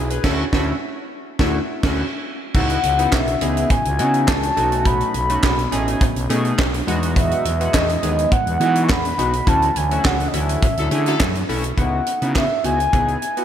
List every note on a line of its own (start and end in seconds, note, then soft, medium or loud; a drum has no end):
0.00 0.19 B1 medium
0.10 0.24 G#4 medium
0.10 0.23 B4 medium
0.10 closed hi-hat medium
0.24 0.44 D2 medium
0.24 0.44 A3 loud
0.24 0.44 C#4 loud
0.24 0.44 E4 loud
0.24 0.44 F#4 loud
0.24 kick medium
0.24 snare medium
0.24 crash medium
0.53 0.73 D2 loud
0.53 0.73 A3 loud
0.53 0.73 C#4 loud
0.53 0.73 E4 loud
0.53 0.73 F#4 loud
0.53 kick loud
0.53 snare loud
1.39 1.59 D2 medium
1.39 1.59 A3 loud
1.39 1.59 C#4 loud
1.39 1.59 E4 loud
1.39 1.59 F#4 loud
1.39 kick medium
1.39 snare loud
1.83 2.03 D2 loud
1.83 2.03 A3 medium
1.83 2.03 C#4 loud
1.83 2.03 E4 medium
1.83 2.03 F#4 loud
1.83 kick loud
1.83 snare loud
1.83 crash medium
2.54 2.78 C#2 loud
2.54 4.54 C#3 medium
2.54 4.54 E3 medium
2.54 2.78 B3 medium
2.54 9.43 B3 medium
2.54 4.55 C#4 medium
2.54 2.79 D#4 medium
2.54 2.79 E4 medium
2.54 6.83 F#4 medium
2.54 2.79 F#4 medium
2.54 3.15 F#5 loud
2.54 kick loud
2.54 crash medium
2.70 closed hi-hat soft
2.83 3.07 C#2 loud
2.83 closed hi-hat medium
2.98 3.22 B3 medium
2.98 3.22 D#4 medium
2.98 3.22 E4 medium
2.98 3.22 F#4 medium
2.98 closed hi-hat medium
3.12 3.36 B1 medium
3.12 3.70 E5 loud
3.12 kick loud
3.12 snare loud
3.12 clap loud
3.12 clap medium
3.28 closed hi-hat medium
3.41 3.65 C#2 medium
3.41 3.73 B3 medium
3.41 3.73 D#4 medium
3.41 3.73 E4 medium
3.41 3.73 G#4 medium
3.41 closed hi-hat medium
3.57 closed hi-hat medium
3.70 4.30 G#5 loud
3.70 kick loud
3.70 closed hi-hat medium
3.85 4.01 C#2 loud
3.85 closed hi-hat medium
3.99 4.30 C#3 loud
3.99 4.31 B3 medium
3.99 4.31 D#4 medium
3.99 4.31 E4 medium
3.99 4.31 F#4 medium
3.99 closed hi-hat medium
4.14 closed hi-hat soft
4.28 4.51 C#2 loud
4.28 4.88 A5 loud
4.28 kick loud
4.28 snare loud
4.28 clap medium
4.28 clap loud
4.43 closed hi-hat medium
4.56 5.03 B1 medium
4.56 9.43 B2 medium
4.56 9.43 F#3 medium
4.56 5.14 A3 medium
4.56 6.85 A3 medium
4.56 5.14 C#4 medium
4.56 5.14 D#4 medium
4.56 5.15 F#4 medium
4.56 closed hi-hat medium
4.72 closed hi-hat medium
4.85 6.01 B5 loud
4.85 kick loud
4.85 closed hi-hat medium
5.01 closed hi-hat soft
5.14 5.38 B1 loud
5.14 closed hi-hat medium
5.29 5.53 A3 medium
5.29 5.53 C#4 medium
5.29 5.53 D#4 medium
5.29 5.53 F#4 medium
5.29 closed hi-hat medium
5.43 5.67 B1 medium
5.43 kick loud
5.43 snare loud
5.43 clap loud
5.43 clap medium
5.59 closed hi-hat medium
5.72 5.95 A1 loud
5.72 6.04 A3 medium
5.72 6.04 C#4 medium
5.72 6.04 D#4 medium
5.72 6.04 G#4 loud
5.72 closed hi-hat medium
5.88 closed hi-hat medium
6.01 kick loud
6.01 closed hi-hat medium
6.16 6.27 B1 loud
6.16 closed hi-hat medium
6.29 6.53 B2 loud
6.29 6.61 A3 loud
6.29 6.61 C#4 medium
6.29 6.62 D#4 medium
6.29 6.62 G#4 loud
6.29 closed hi-hat medium
6.45 closed hi-hat soft
6.58 6.82 B1 loud
6.58 kick loud
6.58 snare loud
6.58 clap medium
6.74 closed hi-hat medium
6.87 7.34 E2 loud
6.87 11.74 E3 medium
6.87 7.45 G#3 loud
6.87 9.44 G#3 medium
6.87 7.45 B3 medium
6.87 7.45 D#4 medium
6.87 7.45 F#4 loud
6.87 closed hi-hat medium
7.03 closed hi-hat medium
7.16 7.76 E5 loud
7.16 kick loud
7.16 closed hi-hat medium
7.31 closed hi-hat soft
7.45 7.68 E2 loud
7.45 closed hi-hat medium
7.60 7.84 G#3 medium
7.60 7.84 B3 medium
7.60 7.84 D#4 medium
7.60 7.84 F#4 medium
7.60 closed hi-hat medium
7.74 7.97 E2 medium
7.74 8.32 D#5 loud
7.74 kick loud
7.74 snare loud
7.74 clap loud
7.89 closed hi-hat medium
8.03 8.26 D#2 medium
8.03 8.34 G#3 medium
8.03 8.35 B3 medium
8.03 8.35 D#4 medium
8.03 8.35 G#4 medium
8.03 closed hi-hat medium
8.19 closed hi-hat medium
8.32 8.85 F#5 loud
8.32 kick loud
8.32 closed hi-hat medium
8.47 8.58 E2 medium
8.47 closed hi-hat soft
8.60 8.91 E3 loud
8.60 8.92 G#3 medium
8.60 8.92 B3 medium
8.60 8.92 D#4 medium
8.60 8.92 F#4 loud
8.60 closed hi-hat medium
8.76 closed hi-hat medium
8.84 8.92 C#6 medium
8.89 9.13 E2 medium
8.89 9.50 B5 loud
8.89 kick loud
8.89 snare loud
8.89 clap medium
9.05 closed hi-hat medium
9.18 9.41 B1 medium
9.18 9.32 G#3 medium
9.18 9.32 B3 medium
9.18 9.33 D#4 medium
9.18 9.33 F#4 medium
9.18 closed hi-hat medium
9.33 closed hi-hat medium
9.47 9.70 D2 loud
9.47 11.75 D3 medium
9.47 11.75 F#3 medium
9.47 9.71 A3 medium
9.47 11.75 A3 medium
9.47 11.75 C#4 medium
9.47 9.71 C#4 medium
9.47 9.71 E4 medium
9.47 9.71 F#4 medium
9.47 9.79 A5 loud
9.47 kick loud
9.47 closed hi-hat medium
9.62 closed hi-hat soft
9.76 9.99 D2 medium
9.76 10.07 G#5 loud
9.76 closed hi-hat medium
9.91 10.14 A3 medium
9.91 10.14 C#4 medium
9.91 10.15 E4 medium
9.91 10.15 F#4 medium
9.91 closed hi-hat medium
10.05 10.28 C#2 loud
10.05 10.29 F#5 loud
10.05 kick loud
10.05 snare loud
10.05 clap loud
10.05 clap medium
10.20 closed hi-hat medium
10.28 10.36 D#5 medium
10.33 10.57 D2 loud
10.33 10.65 A3 medium
10.33 10.65 C#4 medium
10.33 10.65 E4 medium
10.33 10.66 F#4 medium
10.33 11.49 E5 loud
10.33 closed hi-hat medium
10.49 closed hi-hat medium
10.62 kick loud
10.62 closed hi-hat medium
10.77 10.89 D2 medium
10.77 10.89 F#3 medium
10.77 10.89 E4 medium
10.77 10.89 A4 loud
10.77 closed hi-hat medium
10.91 11.15 D3 loud
10.91 11.23 A3 medium
10.91 11.23 C#4 medium
10.91 11.23 E4 medium
10.91 11.23 G#4 medium
10.91 closed hi-hat medium
11.06 11.25 F#3 loud
11.06 11.25 E4 medium
11.06 11.25 A4 loud
11.06 closed hi-hat medium
11.20 11.43 F#2 medium
11.20 kick loud
11.20 snare loud
11.20 clap medium
11.20 clap loud
11.35 closed hi-hat medium
11.49 11.72 B1 medium
11.49 11.63 A3 loud
11.49 11.63 C#4 medium
11.49 11.63 E4 loud
11.49 11.63 F#4 loud
11.49 open hi-hat medium
11.64 closed hi-hat medium
11.77 12.01 C#2 medium
11.77 12.02 B3 medium
11.77 12.02 D#4 medium
11.77 12.02 E4 medium
11.77 12.02 F#4 medium
11.77 12.32 F#5 medium
11.77 kick medium
11.77 closed hi-hat medium
12.06 closed hi-hat medium
12.21 12.45 C#3 loud
12.21 12.45 B3 medium
12.21 12.45 D#4 medium
12.21 12.45 E4 medium
12.21 12.45 F#4 medium
12.21 closed hi-hat medium
12.35 12.63 E5 loud
12.35 kick loud
12.35 snare loud
12.35 clap medium
12.64 12.88 C#2 medium
12.64 12.78 B3 medium
12.64 12.78 D#4 medium
12.64 12.78 E4 medium
12.64 12.79 F#4 medium
12.64 13.45 G#5 loud
12.64 closed hi-hat medium
12.80 closed hi-hat soft
12.93 13.17 C#2 medium
12.93 13.17 B3 medium
12.93 13.17 D#4 medium
12.93 13.17 E4 medium
12.93 13.17 G#4 medium
12.93 kick loud
12.93 closed hi-hat medium
13.08 closed hi-hat soft
13.22 closed hi-hat medium
13.37 13.45 B3 medium
13.37 13.45 D#4 medium
13.37 13.45 E4 medium
13.37 13.45 F#4 medium
13.37 closed hi-hat soft